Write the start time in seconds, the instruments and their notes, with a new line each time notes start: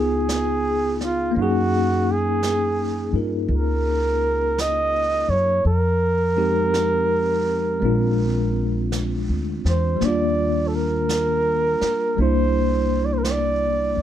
Already playing: upright bass C#2, tine electric piano B3 D#4 F4 G#4, muted trumpet G#4
0.29 brush sweep, snare, hi-hat pedal
1.01 muted trumpet F4, snare
1.31 tine electric piano A#3 C#4, muted trumpet F4
1.36 upright bass F#2, tine electric piano D#4, brush sweep
1.41 muted trumpet F#4, tine electric piano G#4
2.12 muted trumpet G#4
2.43 brush sweep, snare, hi-hat pedal
3.13 upright bass G2, tine electric piano D#4 F4 A#4
3.48 upright bass C#2, brush sweep
3.54 muted trumpet A#4
4.58 muted trumpet D#5, brush sweep, snare, hi-hat pedal
5.28 upright bass F#2, muted trumpet C#5
5.65 upright bass F2, muted trumpet A#4, brush sweep
6.37 tine electric piano G#3 C4 D#4 G4
6.74 brush sweep, snare, hi-hat pedal
7.80 upright bass A#1, tine electric piano G#3 C4 D4, brush sweep
7.85 tine electric piano F4
8.92 brush sweep, snare, hi-hat pedal
9.29 upright bass D2
9.65 upright bass E2, muted trumpet C5, snare
9.96 tine electric piano G3 A#3
10.01 upright bass D#2, tine electric piano D4, muted trumpet D5, brush sweep, snare
10.07 tine electric piano F4
10.67 muted trumpet A4
10.75 muted trumpet A#4
11.09 brush sweep, snare, hi-hat pedal
11.81 muted upright bass stroke, snare
12.16 upright bass C2, tine electric piano G3 A#3 D4, brush sweep
12.21 tine electric piano E4, muted trumpet C5
13.05 muted trumpet D5
13.13 muted trumpet C5
13.18 muted trumpet A#4
13.24 muted trumpet C5, brush sweep, snare, hi-hat pedal
13.31 muted trumpet D5
13.97 upright bass D2